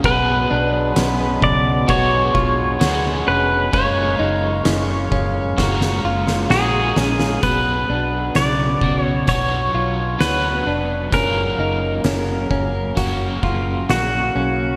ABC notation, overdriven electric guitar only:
X:1
M:4/4
L:1/8
Q:1/4=65
K:Blyd
V:1 name="Overdriven electric guitar"
[B,,F,B,GB]4 [B,=DGB]2 [B,DGB]2 | [F,G,CEA]4 [G,CEA]2 [G,CEA]2 | [B,,F,B,F]3 [B,F] [B,,F,B,=DFc]2 [B,DFc]2 | [F,A,CE]4 [F,A,C]4 |]